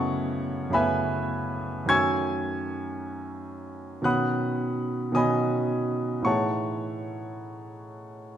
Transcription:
grand piano
Already playing: F#2 C#3 A3 B3 E4 C#5 D#5 F#5 G#5 A5 B5 C#6 D#6
0.70 F#2 C#3 A3 B3 E4 B5
0.74 B4 E5 G#5
1.86 F#2 D#3 A3 C#4 F#4 C#6 E6 G#6
1.90 G#5
4.02 B2 D#3 F#3 C#4 F#4 F#5 B5 D#6 F#6
5.12 B2 D#3 F#3 C#4 F#4 D#6
5.16 D#5 G#5 B5
6.22 A2 E3 A3 D#4 G#4 C#5 F#5 C#6
6.26 A5

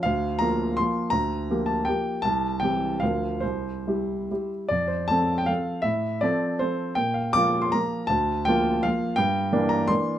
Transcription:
grand piano
0.03 D2 F5
0.39 F3 A#3 F4 A#5
0.77 F3 A#3 F4 C6
1.10 D2 A#5
1.50 F3 A#3 G4
1.66 A5
1.85 F3 A#3 G4 G5
2.22 C2 A5
2.60 E3 C4 G4 G5
3.00 D2 F3 F4 A#4 F5
3.40 C2 C5
3.87 G3 E4 G4
4.31 G3 E4 G4
4.69 F2 D5
4.87 C5
5.08 F3 C4 A4 A5
5.38 G5
5.46 F3 C4 A4 F5
5.82 A2 E5
6.21 F3 C4 A4 D5
6.59 F3 C4 A4 C5
6.95 A#2 G5
7.14 F5
7.33 F3 A#3 F4 D6
7.62 C6
7.72 F3 A#3 F4 A#5
8.07 D2 A5
8.45 F3 A#3 F4 G5
8.83 F3 A#3 F4 F5
9.16 G2 G5
9.53 E3 A#3 D4
9.69 A#5
9.88 E3 A#3 D4 C6

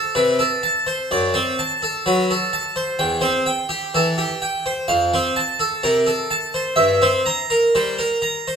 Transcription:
harpsichord
Already playing: A4
0.15 C3 B4
0.39 A4
0.63 A5
0.87 C5
1.11 F#2 D5
1.34 C4 C5
1.59 A5
1.83 A4
2.06 F#3 B4
2.30 A4
2.53 A5
2.76 C5
2.99 E2 G5
3.21 C4 C5
3.46 G5
3.69 G4
3.94 E3 A4
4.18 G4
4.42 G5
4.66 C5
4.88 F2 F5
5.14 C4 C5
5.36 A5
5.59 A4
5.83 C3 A#4
6.07 A4
6.31 A5
6.54 C5
6.76 G2 E5
7.02 C4 C5
7.26 A#5
7.50 A#4
7.75 G3 C5
7.99 A#4
8.22 A#5
8.48 C5

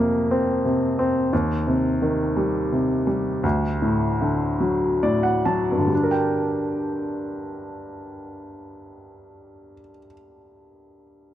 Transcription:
grand piano
Already playing: F2 C3 A#3
0.31 C4
0.65 C3
0.99 C4
1.33 D#2
1.67 C3
2.02 D#3
2.37 G3
2.72 C3
3.07 G3
3.43 D2
3.82 A2
4.21 D3
4.60 F#3
5.03 A2 D5
5.23 F#5
5.45 F#3 A5
5.72 G2
5.79 D3
5.87 G3
5.95 D4
6.03 A#4
6.11 G5

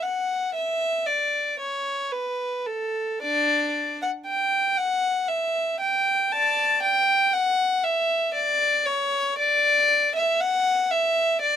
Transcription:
violin
0.02 F#5
0.54 E5
1.06 D5
1.59 C#5
2.12 B4
2.66 A4
3.22 D4 D5
4.02 F#5
4.26 G5
4.77 F#5
5.28 E5
5.80 G5
6.32 D5 A5
6.83 G5
7.33 F#5
7.84 E5
8.34 D5
8.85 C#5
9.38 D5
10.16 E5
10.40 F#5
10.91 E5
11.41 D5

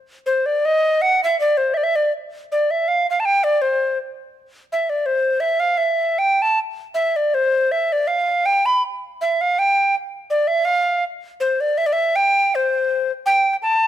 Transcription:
recorder
0.26 C5
0.46 D5
0.65 D#5
1.02 F#5
1.24 E5
1.40 D5
1.57 C5
1.74 D5 E5
1.84 E5
1.96 D5
2.52 D5
2.71 E5
2.88 F5
3.10 F5
3.20 A5
3.25 G5
3.44 D5
3.62 C5
4.72 E5
4.90 D5
5.06 C5
5.40 E5
5.60 F5
5.78 E5
6.19 G5
6.42 A5
6.94 E5
7.16 D5
7.34 C5
7.72 E5
7.92 D5
8.07 F5
8.46 G5
8.66 B5
9.21 E5
9.41 F5
9.59 G5
10.30 D5
10.47 E5
10.65 F5
11.40 C5
11.61 D5
11.78 E5
11.86 D5
11.93 E5
12.16 G5
12.55 C5
13.26 G5
13.53 G5
13.62 A5

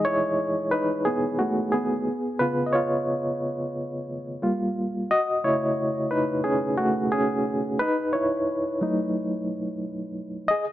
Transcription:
reed electric piano
Already playing: E3 G#3 D#4 G#4 D#5
0.05 E4 C#5
0.71 D#4 B4
1.05 B3 G#4
1.39 A3 F#4
1.72 B3 G#4
2.39 C#3 B3 F4 B4
2.66 D#5
2.73 F4 C#5
4.42 G3 A#3 F4
5.11 F#4 D#5
5.44 C#3 A3 E4 C#5
6.11 D#4 B4
6.44 C#4 G#4
6.77 A3 F#4
7.12 C#4 G#4
7.79 D#4 B4
8.13 E4 C#5
8.81 F#3 A3 D#4
10.48 G#4 D#5

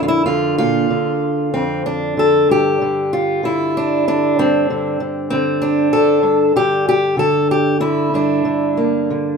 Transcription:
steel-string acoustic guitar
Already playing: F2 D3 A#3 D4
0.03 F4
0.08 E4
0.26 D3 F4
0.58 A#2 F4
0.91 D3
1.54 F2 C4
1.86 D4
2.17 D3 A4
2.49 G2 G4
2.82 D3
3.13 F4
3.43 D3 E4
3.77 D4
4.08 D3 D4
4.39 G2 C4
4.70 D3
5.00 D3
5.30 D3 C4
5.62 D4
5.93 D3 A4
6.23 G2
6.56 D3 G4
6.89 G4
7.17 D3 A4
7.51 G4
7.80 D3 E4
8.14 G2 D4
8.45 D3
8.77 A#3
9.10 D3

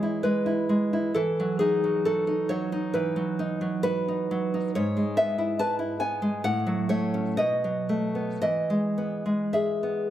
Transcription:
nylon-string guitar
Already playing: E3 G#3 C#5
0.03 E4
0.23 G#3 B4
0.46 E4
0.69 G#3
0.93 E4
1.14 E3 A4
1.40 F#3
1.59 D#4 G#4
1.84 F#3
2.05 F#4 A4
2.27 D#4
2.49 F#3 C#5
2.72 D#4
2.94 E3 B4
3.16 F#3
3.39 D#4
3.61 F#3
3.83 F#4 B4
4.08 D#4
4.31 F#3
4.54 D#4
4.75 G#2 C#5
4.97 G#3
5.17 B3 E5
5.38 E4
5.59 B4 A5
5.79 E4
6.00 B3 G#5
6.22 G#3
6.44 A2 F#5
6.67 F#3
6.89 A3 C#5
7.14 C#4
7.37 B2 D#5
7.64 F#3
7.89 A3
8.15 B3
8.42 E3 D#5
8.70 G#3
8.98 B3
9.26 G#3
9.53 G#4 E5
9.83 B3

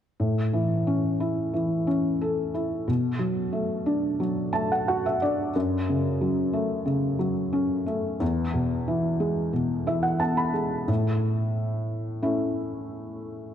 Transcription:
felt piano
0.20 A2
0.53 E3
0.87 C#4
1.20 E4
1.54 E3
1.87 C#4
2.21 A4
2.54 E4
2.88 B2
3.19 F#3
3.53 A3
3.86 D4
4.20 F#3
4.53 A3 A5
4.72 F#5
4.88 F#4 F#5
5.06 E5
5.22 D4 D5
5.56 F#2
5.89 C#3
6.21 F#3
6.53 A3
6.86 C#3
7.19 F#3
7.53 C#4
7.86 A3
8.20 E2
8.54 B2
8.88 E3
9.20 G#3
9.53 B2
9.87 E3 E5
10.03 F#5
10.19 B3 A5
10.37 B5
10.54 G#3
10.88 A2
12.22 A3 C#4 E4

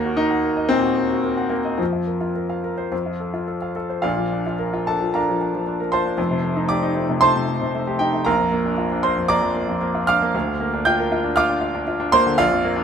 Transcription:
grand piano
Already playing: D#2 A#3 F#4 A#4
0.05 F#4
0.17 D#4 A#4
0.31 F#5
0.44 A#4
0.57 D#5
0.69 A#2 C4
0.83 F#4
0.96 A#4
1.11 F#4
1.24 A#4
1.37 F#5
1.50 A#3 A#4
1.65 D#5
1.78 F2 F3
1.93 F4
2.07 A#4
2.20 F4
2.35 A#4
2.49 F5
2.64 A#4
2.78 C5
2.92 F2
3.06 F4
3.20 A4
3.34 F4
3.47 A4
3.62 F5
3.76 A4
3.90 C5
4.02 A#1 A#2 F4 D5 F5
4.17 F3
4.32 D4
4.46 F4
4.59 A#4
4.73 F4
4.87 D4 A4 A5
5.01 F3
5.14 D4 A#4 F5 A#5
5.29 F3
5.41 D4
5.55 F3
5.67 D4
5.80 A#4
5.92 F4 C5 A5 C6
6.05 D4
6.17 F1 F2
6.31 C3
6.43 A3
6.56 D#4
6.69 G4 D5 D6
6.82 D#4
6.96 A3
7.09 C3
7.21 A3 C5 A5 C6
7.35 C3
7.48 A3
7.61 C3
7.75 A3
7.87 G4
7.99 D#4 G4 G5
8.13 A3
8.25 A#1 A#4 F5 A#5
8.38 F2
8.52 A#3
8.65 D4
8.78 F4
8.91 D4
9.03 A#3 C5 C6
9.16 F2
9.28 A#3 D5 A#5 D6
9.42 F2
9.55 A#3
9.68 F2
9.81 A#3
9.95 F4
10.07 D4 F5 D6 F6
10.22 A#3
10.34 D2
10.47 D3
10.60 A#3
10.74 D4
10.85 F4 G5 G6
10.99 A#4
11.12 F4
11.24 D4
11.36 F4 F5 D6 F6
11.49 D4
11.61 F4
11.75 D4
11.87 F4
12.00 D4
12.12 A#3 C5 C6
12.26 D3
12.38 A#1 F4 D5 F5
12.51 F2
12.65 A#3
12.76 D4

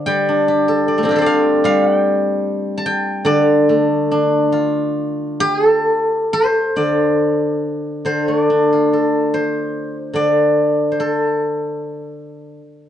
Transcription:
guzheng
Already playing: D3 C5 D5 F5 A5 C6 D6
0.06 G3 G5
0.29 D4
0.48 G4
0.68 A4
0.88 D5
0.98 A3
1.03 C4 D4
1.09 F4 G4
1.16 A4 C5
1.22 D5
1.26 F5
1.64 G3 F5
1.85 F#5
1.98 G5
2.77 A5
2.86 G5
3.25 D3 D5
3.69 A3
4.11 D4
4.52 F4
5.40 G4
5.66 A4
6.33 C5
6.76 D3 D5
8.05 D3 C5
8.28 A3 C#5
8.43 D5
8.50 D4
8.73 F4
8.93 A4
9.34 C5
10.13 D3 D5
10.92 C5
11.00 A4

